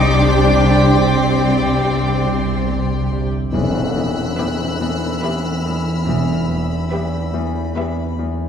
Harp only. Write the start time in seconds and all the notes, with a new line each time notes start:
Already playing: C3 D#4
0.14 C4
0.56 C3
0.97 C3
1.41 C3
1.84 C3
2.26 C3
2.69 C4
3.12 C3
3.54 E2
3.96 E2
4.38 E2
4.80 E2
5.23 E2
5.65 E2
6.08 E2
6.50 E2
6.92 E2
7.34 E2
7.76 E2
8.19 E2